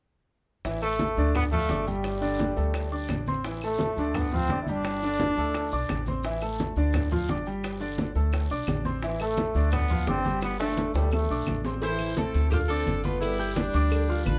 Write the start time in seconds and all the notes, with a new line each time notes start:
0.65 A1 E3 E4 E5, high bongo, high conga, long guiro, maracas
0.82 A3 A4 A5, high conga, claves
0.99 high bongo, high conga, short guiro, maracas
1.17 D2 D3 D4 D5, high conga, short guiro, maracas
1.35 B3, high bongo, high conga, low conga, long guiro, claves, maracas
1.51 F3 A3 F4 F5, high conga, low conga
1.69 G1 D4 D5 D6, high bongo, low bongo, high conga, short guiro, maracas
1.87 G3 G4 G5, high conga, short guiro, maracas
2.04 high bongo, high conga, long guiro, claves, maracas
2.21 D3 D4 D5, high conga, maracas
2.39 high bongo, high conga, short guiro, maracas
2.56 D2 A3 A4 A5, high bongo, high conga, short guiro, maracas
2.74 high bongo, high conga, long guiro, claves, maracas
2.92 D4 D5 D6, high bongo, high conga
3.09 A1, high bongo, low bongo, high conga, short guiro, claves, maracas
3.26 C4 C5 C6, high bongo, high conga, short guiro, maracas
3.44 E3 E4 E5, high bongo, high conga, long guiro, maracas
3.62 A3 A4 A5, high conga, claves, maracas
3.79 high bongo, high conga, short guiro, maracas
3.97 D2 D3 D4 D5, high conga, short guiro, maracas
4.14 B3, high bongo, high conga, low conga, long guiro, claves, maracas
4.32 F3 C4 F4 F5, high conga, low conga
4.49 G1 D4 D5 D6, high bongo, low bongo, high conga, short guiro, maracas
4.62 E4
4.67 G3 G4 G5, high conga, short guiro, maracas
4.71 D4
4.84 high bongo, high conga, long guiro, claves, maracas
5.02 D3 D4 D5, high conga, maracas
5.19 high bongo, high conga, short guiro, maracas
5.37 D2 A3 A4 A5, high bongo, high conga, short guiro, maracas
5.54 high bongo, high conga, long guiro, claves, maracas
5.71 B1 D4 D5 D6, high bongo, high conga, maracas
5.88 A1, high bongo, low bongo, high conga, short guiro, claves, maracas
6.06 C4 C5 C6, high bongo, high conga, short guiro, maracas
6.23 E3 E4 E5, high bongo, high conga, long guiro, maracas
6.41 A3 A4 A5, high conga, claves, maracas
6.58 high bongo, high conga, short guiro, maracas
6.76 D2 D3 D4 D5, high conga, short guiro, maracas
6.93 high bongo, high conga, low conga, long guiro, claves, maracas
7.11 F3 F4 F5, high conga, low conga, maracas
7.27 G1 D4 D5 D6, high bongo, low bongo, high conga, short guiro, maracas
7.46 G3 G4 G5, short guiro, maracas
7.64 high bongo, high conga, long guiro, claves, maracas
7.80 D3 D4 D5, high conga, maracas
7.98 high bongo, high conga, short guiro, maracas
8.15 D2 A3 A4 A5, high bongo, high conga, short guiro, maracas
8.32 high bongo, high conga, long guiro, claves, maracas
8.49 B1 D4 D5 D6, high bongo, high conga, maracas
8.67 A1, high bongo, low bongo, high conga, short guiro, claves, maracas
8.85 C4 C5 C6, high bongo, high conga, short guiro, maracas
9.02 E3 E4 E5, high bongo, high conga, long guiro, maracas
9.20 A3 A4 A5, high conga, claves, maracas
9.37 high bongo, high conga, short guiro, maracas
9.55 D2 D3 D4 D5, high conga, short guiro, maracas
9.71 B3, high bongo, high conga, low conga, long guiro, claves, maracas
9.88 F3 F4 F5, high conga, low conga, maracas
10.06 G1 D4 D5 D6, high bongo, low bongo, high conga, short guiro, maracas
10.10 C4
10.24 G3 G4 G5, high conga, short guiro, maracas
10.41 B3, high bongo, high conga, long guiro, claves, maracas
10.59 D3 A3 D4 D5, high bongo, high conga, maracas
10.77 high bongo, high conga, short guiro, maracas
10.94 D2 G3 A3 A4 A5, high bongo, high conga, short guiro, maracas
11.11 A3, low bongo, high conga, long guiro, claves, maracas
11.29 B1 D4 D5 D6, high conga
11.47 A1, low bongo, high conga, short guiro, claves, maracas
11.64 C4 C5 C6, low bongo, short guiro, maracas
11.82 E3 E4 C5 E5, cowbell, high conga, long guiro, maracas
11.99 high conga, claves, maracas
12.17 A3 C4 A4 A5, cowbell, high conga, short guiro, maracas
12.34 D2, cowbell, high conga, short guiro, maracas
12.50 D4 F4 G4 F5 F6, cowbell, high conga, low conga, long guiro, claves, maracas
12.69 C4 D4 A4 D5 D6, high conga, maracas
12.86 G1, cowbell, high conga, short guiro, maracas
13.04 A3 B3 F4 B4 B5, cowbell, high conga, short guiro, maracas
13.21 G3 E4, cowbell, high conga, long guiro, claves, maracas
13.39 G4 G5 G6, high conga, maracas
13.56 G3 D4, cowbell, high conga, short guiro, maracas
13.73 D2 D4 D5 D6, cowbell, high conga, short guiro, maracas
13.91 cowbell, high conga, long guiro, claves, maracas
14.09 F4 F5 F6, high conga
14.25 A1 D4 B4, cowbell, high conga, short guiro, claves, maracas